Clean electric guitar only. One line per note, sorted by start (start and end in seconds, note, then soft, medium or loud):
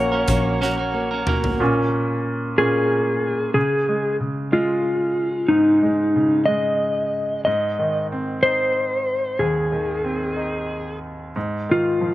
0.00 0.13 C#4 soft
0.00 0.12 F#4 soft
0.00 0.11 A#4 soft
0.12 0.27 C#4 soft
0.12 0.28 F#4 medium
0.12 0.28 A#4 medium
0.28 0.60 A#3 medium
0.28 0.61 C#4 medium
0.28 0.61 F#4 medium
0.28 0.62 A#4 medium
0.61 0.78 A#3 medium
0.61 0.78 C#4 medium
0.61 0.78 F#4 medium
0.61 0.76 A#4 medium
0.78 1.12 C#4 soft
0.78 1.11 F#4 medium
0.78 1.10 A#4 medium
1.11 1.26 C#4 soft
1.11 1.27 F#4 soft
1.11 1.27 A#4 medium
1.27 1.60 A#3 medium
1.27 1.60 C#4 medium
1.27 1.61 F#4 medium
1.27 1.61 A#4 medium